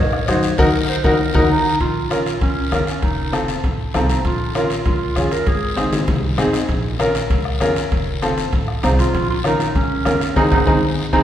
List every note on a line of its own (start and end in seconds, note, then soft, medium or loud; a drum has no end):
0.00 0.22 A#1 loud
0.00 0.27 C#5 medium
0.13 bombo rim medium
0.28 0.53 F#2 medium
0.28 0.49 D#4 medium
0.28 0.50 F#4 medium
0.28 0.50 C5 medium
0.28 0.59 C#5 medium
0.28 bombo rim medium
0.28 cowbell medium
0.28 high conga medium
0.28 short guiro medium
0.43 short guiro medium
0.58 0.70 D#2 medium
0.58 0.69 D#4 medium
0.58 0.68 F#4 loud
0.58 0.88 A#4 medium
0.58 0.68 A#4 loud
0.58 bombo low loud
0.58 high conga loud
0.58 high timbale loud
0.58 long guiro loud
0.89 1.05 C5 medium
1.04 1.16 D#2 medium
1.04 1.14 D#4 medium
1.04 1.14 F#4 medium
1.04 1.36 A#4 medium
1.04 1.14 A#4 medium
1.04 bombo low medium
1.04 high conga loud
1.04 high timbale loud
1.04 long guiro loud
1.34 1.46 D#2 loud
1.34 1.45 D#4 loud
1.34 1.44 F#4 medium
1.34 1.44 A#4 medium
1.34 bombo low medium
1.34 high conga loud
1.34 high timbale medium
1.34 long guiro medium
1.49 1.78 D#4 loud
1.80 2.29 A#1 medium
1.80 2.08 F4 medium
1.80 bombo low medium
1.80 high conga soft
1.80 high timbale medium
1.80 long guiro medium
2.10 2.32 C#4 medium
2.10 2.39 F4 medium
2.10 2.32 F4 medium
2.10 2.32 A#4 medium
2.10 bombo rim medium
2.10 high conga medium
2.10 high timbale medium
2.10 short guiro medium
2.26 high timbale medium
2.26 short guiro medium
2.41 2.66 C#2 medium
2.41 2.84 C#4 medium
2.41 bombo low medium
2.41 high conga soft
2.41 high timbale medium
2.41 long guiro medium
2.72 2.84 F2 medium
2.72 2.93 C#4 medium
2.72 2.93 F4 medium
2.72 2.94 A#4 medium
2.72 bombo rim medium
2.72 high conga medium
2.72 high timbale medium
2.72 low timbale medium
2.72 short guiro medium
2.87 3.04 C#4 medium
2.87 high timbale medium
2.87 short guiro medium
3.02 3.52 F1 loud
3.02 3.48 D#4 medium
3.02 bombo low medium
3.02 high conga soft
3.02 high timbale medium
3.02 long guiro medium
3.32 3.54 C4 medium
3.32 3.54 F4 medium
3.32 3.55 A4 medium
3.32 bombo rim medium
3.32 high conga medium
3.32 high timbale medium
3.32 short guiro medium
3.48 high timbale medium
3.48 short guiro medium
3.63 3.88 A1 medium
3.63 bombo low medium
3.63 high conga soft
3.63 high timbale medium
3.63 long guiro medium
3.94 4.07 C2 medium
3.94 4.16 C4 medium
3.94 4.23 D#4 medium
3.94 4.16 F4 medium
3.94 4.16 A4 medium
3.94 bombo rim medium
3.94 high conga medium
3.94 high timbale medium
3.94 low timbale medium
3.94 short guiro medium
4.10 high timbale medium
4.10 short guiro medium
4.25 4.74 A#1 medium
4.25 4.54 F4 medium
4.25 bombo low medium
4.25 high conga soft
4.25 high timbale medium
4.25 long guiro medium
4.55 4.77 C#4 medium
4.55 4.84 F4 medium
4.55 4.77 F4 medium
4.55 4.77 A#4 medium
4.55 bombo rim medium
4.55 high conga medium
4.55 high timbale medium
4.55 short guiro medium
4.70 high timbale medium
4.70 short guiro medium
4.86 5.10 C#2 medium
4.86 5.34 F4 medium
4.86 bombo low medium
4.86 high conga soft
4.86 high timbale medium
4.86 long guiro medium
5.16 5.29 F2 medium
5.16 5.38 C#4 medium
5.16 5.38 F4 medium
5.16 5.39 G#4 medium
5.16 bombo rim medium
5.16 high conga medium
5.16 high timbale medium
5.16 short guiro medium
5.31 5.49 A#4 medium
5.31 high timbale medium
5.31 short guiro medium
5.47 5.96 G#1 loud
5.47 5.93 G#4 medium
5.47 bombo low medium
5.47 high conga soft
5.47 high timbale medium
5.47 long guiro medium
5.76 5.98 C4 medium
5.76 5.99 D#4 medium
5.76 5.99 G#4 medium
5.76 bombo rim medium
5.76 high conga medium
5.76 high timbale medium
5.76 short guiro medium
5.93 high conga medium
5.93 high timbale medium
5.93 short guiro medium
6.08 6.33 C2 medium
6.08 bombo low medium
6.08 high conga medium
6.08 high timbale medium
6.08 long guiro medium
6.38 6.51 D#2 medium
6.38 6.60 C4 medium
6.38 6.60 D#4 medium
6.38 6.60 G#4 medium
6.38 bombo rim medium
6.38 low conga medium
6.38 high timbale medium
6.38 low timbale medium
6.38 short guiro medium
6.53 low conga medium
6.53 high timbale medium
6.53 short guiro medium
6.69 7.18 A#1 medium
6.69 bombo low medium
6.69 high conga soft
6.69 high timbale medium
6.69 long guiro medium
7.00 7.21 C#4 medium
7.00 7.21 F4 medium
7.00 7.22 A#4 medium
7.00 bombo rim medium
7.00 high conga medium
7.00 high timbale medium
7.00 short guiro medium
7.15 high timbale medium
7.15 short guiro medium
7.30 7.55 C#2 medium
7.30 bombo low medium
7.30 high conga soft
7.30 high timbale medium
7.30 long guiro medium
7.45 bombo rim medium
7.60 7.73 F2 medium
7.60 7.82 C#4 medium
7.60 7.83 F4 medium
7.60 7.83 A#4 medium
7.60 bombo rim medium
7.60 high conga medium
7.60 high timbale medium
7.60 low timbale medium
7.60 short guiro medium
7.76 high timbale medium
7.76 short guiro medium
7.92 8.41 F1 medium
7.92 bombo low medium
7.92 high conga soft
7.92 high timbale medium
7.92 long guiro medium
8.22 8.44 C4 medium
8.22 8.44 F4 medium
8.22 8.44 A4 medium
8.22 bombo rim medium
8.22 high conga medium
8.22 high timbale medium
8.22 short guiro medium
8.38 high timbale medium
8.38 short guiro medium
8.53 8.77 A1 medium
8.53 bombo low medium
8.53 high conga soft
8.53 high timbale medium
8.53 long guiro medium
8.68 bombo rim medium
8.83 8.96 C2 loud
8.83 9.05 C4 medium
8.83 8.90 D#4 medium
8.83 9.05 F4 medium
8.83 9.05 C5 medium
8.83 bombo rim medium
8.83 high conga medium
8.83 high timbale medium
8.83 low timbale medium
8.83 short guiro medium
8.99 9.28 F4 loud
8.99 high timbale medium
8.99 short guiro medium
9.14 9.63 A#1 loud
9.14 bombo low medium
9.14 high conga soft
9.14 high timbale medium
9.14 long guiro medium
9.30 9.37 F4 medium
9.44 9.66 C#4 medium
9.44 9.74 D#4 medium
9.44 9.66 F4 medium
9.44 9.66 A#4 medium
9.44 bombo rim medium
9.44 high conga medium
9.44 high timbale medium
9.44 short guiro medium
9.60 high timbale medium
9.60 short guiro medium
9.75 10.00 C#2 medium
9.75 10.32 C#4 medium
9.75 bombo low medium
9.75 high conga soft
9.75 high timbale medium
9.75 long guiro medium
10.05 10.18 F2 loud
10.05 10.27 C#4 medium
10.05 10.27 F4 medium
10.05 10.27 A#4 medium
10.05 bombo rim medium
10.05 high conga medium
10.05 high timbale medium
10.05 low timbale medium
10.05 short guiro medium
10.21 high timbale medium
10.21 short guiro medium
10.36 10.48 G#1 medium
10.36 10.46 C4 medium
10.36 10.44 D#4 medium
10.36 10.46 D#4 medium
10.36 10.46 G#4 loud
10.36 bombo low medium
10.36 high conga loud
10.36 high timbale medium
10.36 long guiro medium
10.51 10.63 G#1 medium
10.51 10.61 C4 medium
10.51 10.61 D#4 medium
10.51 10.59 D#4 medium
10.51 10.61 G#4 medium
10.51 bombo low medium
10.51 high conga medium
10.51 high timbale loud
10.51 long guiro medium
10.66 10.78 G#1 medium
10.66 10.77 C4 medium
10.66 10.76 D#4 medium
10.66 10.74 D#4 medium
10.66 10.76 G#4 medium
10.66 bombo low medium
10.66 high conga loud
10.66 high timbale medium
10.66 long guiro medium
11.13 11.23 G#1 medium
11.13 11.23 C4 medium
11.13 11.23 D#4 medium
11.13 11.20 D#4 medium
11.13 11.23 G#4 medium
11.13 bombo low medium
11.13 high conga medium
11.13 high timbale medium
11.13 long guiro medium